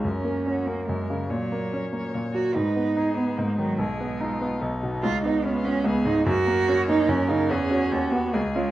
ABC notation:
X:1
M:3/4
L:1/8
Q:1/4=144
K:F#
V:1 name="Violin"
A2 F2 A2 | c6 | B2 G2 D2 | G2 E2 D2- |
D2 E2 G2 | A2 c2 A2 | G2 F2 G2 |]
V:2 name="Cello"
C3 A, G,2 | F,4 z F | D3 B, A, F, | G,4 z2 |
E D B, C B, D | F3 D C D | C3 B, A, G, |]
V:3 name="Grand piano"
F,, A, C A, F,, C, | A,, A, C A, A,, F, | G,, B, D B, G,, D, | B,,, B, D B, B,,, B,, |
C,, B, C B, C,, G,, | F,, A, C A, F,, C, | =E,, [CF] D,, [B,F] C,, [C^E] |]